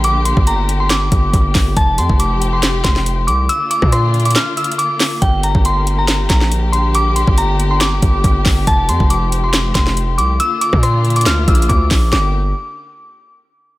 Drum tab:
HH |x-----------x-----------x-----------x-----------x-----------x-----------x-----------o-----------|x-----------x-----------x-----------x-----------x-----------x-----------x-----------x-----------|x-----------x-----------x-----------x--x--x--x--x-----------x---x---x---x-----------o-----------|x-----------x-----------x-----------x-----------x-----------x-----------x-----------x-----------|
CP |------------------------------------------------x-----------------------------------x-----------|------------------------------------------------x-----------x-----------------------------------|------------------------------------------------x-----------------------------------x-----------|------------------------------------------------x-----------x-----------------------------------|
SD |------------------------------------------------o-----------------------------------o-----------|------------------------------------------------o-----------o-----o-----------------------------|------------------r-----r-----------------------o-----------------------------------o-----------|------------------------------------------------o-----------o-----o-----------------------------|
BD |------------------o-----------------------------------------o-----------o-----------o-----------|o-----------------o-----------------------------------------o-----------------------------------|------------------o-----------------------------------------------------------------------------|o-----------------o-----------------------------------------o-----------------------------------|

HH |x-----------x-----------x-----------x-----------x-----------x-----------x-----------o-----------|x-----------x-----------x-----------x-----------x-----------x-----------x-----------x-----------|x-----------x-----------x-----------x--x--x--x--x-----------x---x---x---x-----------o-----------|------------------------------------------------------------------------------------------------|
CP |------------------------------------------------x-----------------------------------x-----------|------------------------------------------------x-----------x-----------------------------------|------------------------------------------------x-----------------------------------x-----------|------------------------------------------------------------------------------------------------|
SD |------------------------------------------------o-----------------------------------o-----------|------------------------------------------------o-----------o-----o-----------------------------|------------------r-----r-----------------------o-----------------------------------o-----------|o-----------------------------------------------------------------------------------------------|
BD |------------------o-----------------------------------------o-----------o-----------o-----------|o-----------------o-----------------------------------------o-----------------------------------|------------------o-----------------------------------------o-----------o-----------o-----------|------------------------------------------------------------------------------------------------|